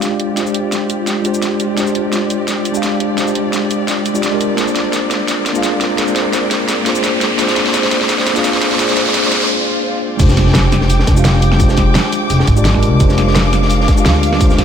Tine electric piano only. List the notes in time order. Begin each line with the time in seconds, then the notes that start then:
Already playing: G#3 D4 F4 G4 C5 F5
0.34 G#3 D4 F4
0.38 G4 C5
1.22 G#3 D4 F4
1.26 G4 C5
1.75 G#3 D4 F4
1.79 G4 C5
2.72 G#3 D4 F4
2.76 G4 F5
3.15 G#3 D4 F4
3.19 G4 C5
4.13 G#3 D4 F4 G4 D5
4.31 G#3 D4 F4 G4 A#4
4.55 A#3 D4 F4
4.59 G#4 C5
5.52 A#3 D4 F4
5.57 G#4 F5
5.96 A#3 D4 F4
6.00 G#4 C5
6.83 A#3 D4 F4
6.87 G#4 C5
7.36 A#3 D4 F4
7.40 G#4 C5
8.33 A#3 D4 F4
8.37 G#4 F5
8.76 A#3 D4 F4
8.80 G#4 C5
10.17 G#3 D4 F4
10.21 G4 C5
11.14 G#3 D4 F4
11.18 G4 F5
11.57 G#3 D4 F4
11.61 G4 C5
12.55 G#3 D4 F4 G4 D5
12.73 G#3 D4 F4 G4 A#4
12.97 G#3 D4 F4
13.02 G4 C5
13.94 G#3 D4 F4
13.99 G4 F5
14.38 G#3 D4 F4
14.42 G4 C5